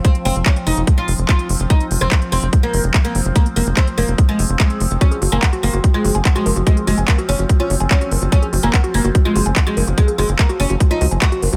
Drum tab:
HH |xxoxxxoxx-oxxxox|xxoxxxoxx-oxxxox|xxoxxxoxx-oxxxox|xxoxxxoxx-oxxxox|
CP |----x-------x---|----x-------x---|----x-------x---|----x-------x---|
BD |o---o---o---o---|o---o---o---o---|o---o---o---o---|o---o---o---o---|

HH |xxoxxxoxx-oxxxox|xxoxxxoxx-oxxxox|xxoxxxoxxxoxxxox|
CP |----x-------x---|----x-------x---|----x-------x---|
BD |o---o---o---o---|o---o---o---o---|o---o---o---o---|